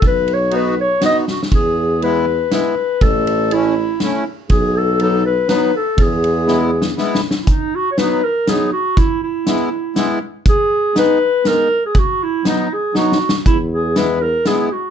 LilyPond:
<<
  \new Staff \with { instrumentName = "Clarinet" } { \time 3/4 \key e \major \tempo 4 = 121 b'8 cis''8 b'8 cis''8 dis''8 fis'8 | gis'4 b'4 b'4 | a'4 e'4 e'8 r8 | gis'8 a'8 a'8 b'8 b'8 a'8 |
gis'2 r8. r32 e'32 | \key b \major dis'8 fis'16. cis''32 b'8 ais'8 gis'8 fis'8 | e'8 e'2 r8 | gis'4 b'4 ais'8. gis'16 |
fis'8 e'8 dis'8 gis'8 fis'8. r16 | e'8 gis'8 b'8 ais'8 gis'8 fis'8 | }
  \new Staff \with { instrumentName = "Accordion" } { \time 3/4 \key e \major r4 <b dis' fis'>8 r8 <b dis' fis'>8 r8 | r4 <gis b e'>8 r8 <gis b e'>8 r8 | r4 <a cis' e'>8 r8 <a cis' e'>8 r8 | r4 <fis b dis'>8 r8 <fis b dis'>8 r8 |
r4 <gis b e'>8 r8 <gis b e'>8 r8 | \key b \major r4 <fis b dis'>8 r8 <fis b dis'>8 r8 | r4 <gis b e'>8 r8 <gis b e'>8 r8 | r4 <gis b dis'>8 r8 <gis b dis'>8 r8 |
r4 <fis b dis'>8 r8 <fis b dis'>8 r8 | r4 <gis b e'>8 r8 <gis b e'>8 r8 | }
  \new Staff \with { instrumentName = "Tuba" } { \clef bass \time 3/4 \key e \major b,,2. | e,2. | a,,2. | b,,2. |
e,2. | \key b \major r2. | r2. | r2. |
r2. | e,2. | }
  \new DrumStaff \with { instrumentName = "Drums" } \drummode { \time 3/4 <bd cymr>8 cymr8 cymr4 \tuplet 3/2 { <cymr sn>16 r16 r16 sn16 r16 sn16 } | <bd cymr>4 cymr4 <cymr sn>4 | <bd cymr>8 cymr8 cymr4 <cymr sn>4 | <bd cymr>4 cymr4 <cymr sn>4 |
<bd cymr>8 cymr8 \tuplet 3/2 { sn8 r8 sn8 sn8 sn8 sn8 } | <hh bd>4 <hh sn>4 <hh sn>4 | <hh bd>4 <hh sn>4 <hh sn>4 | <hh bd>4 <hh sn>4 <hh sn>4 |
<hh bd>4 <hh sn>4 \tuplet 3/2 { sn8 sn8 sn8 } | <hh bd>4 <hh sn>4 <hh sn>4 | }
>>